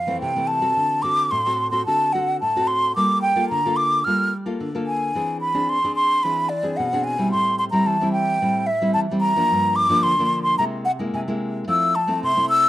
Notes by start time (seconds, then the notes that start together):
Already playing: F2 F5
0.07 E3 A3 C4
0.21 C3 G5
0.36 E3 A3 C4
0.47 A5
0.61 C4 F#4 A4
0.77 D3
1.02 C4 F#4 A4 D6
1.31 A2 C6
1.46 C4 F#4 A4
1.71 C4 F#4 A4 C6
1.86 D3 C4 F#4 A4 A5
2.13 C4 F#4 A4 F#5
2.41 A2 A5
2.56 C4 F#4 A4
2.67 C6
2.96 G3 A#3 F4 A4 D6
3.22 G5
3.36 A#3 F4 A4
3.50 D3 A#5
3.66 A#3 F4 A4
3.76 D6
4.04 G3 A#3 F4 A4 F6
4.46 A#3 F4 A4
4.60 D3
4.75 A#3 F4 A4
4.87 G#5
5.15 E3 C4 D4 G#4
5.41 B5
5.54 C4 D4 G#4
5.69 C6
5.84 C4 D4 G#4
5.95 C6
6.23 E3 C4 D4 G#4 B5
6.49 D5
6.63 C4 D4 G#4
6.77 B2 F#5
6.93 C4 D4 G#4
7.04 G#5
7.18 G3 C4 E4
7.31 A2 C6
7.58 C6
7.71 G3 C4 E4 A#5
7.86 E3 A5
8.01 G3 C4 E4
8.12 G5
8.42 A2 G3 C4 E4
8.66 E5
8.81 G3 C4 E4
8.94 E3 A5
9.11 G3 C4 E4
9.20 A#5
9.36 F3 A#3 D4
9.51 G2
9.76 D6
9.89 F3 A#3 D4
10.03 D3 C6
10.19 F3 A#3 D4
10.43 C6
10.58 C3 G#3 A#3 E4 A#5
10.85 F#5
10.99 G#3 A#3 E4
11.14 C3 G#5
11.28 G#3 A#3 E4
11.67 F3 A3 C4 E4 E6
11.95 A5
12.07 A3 C4 E4
12.23 C3 C6
12.37 A3 C4 E4
12.49 E6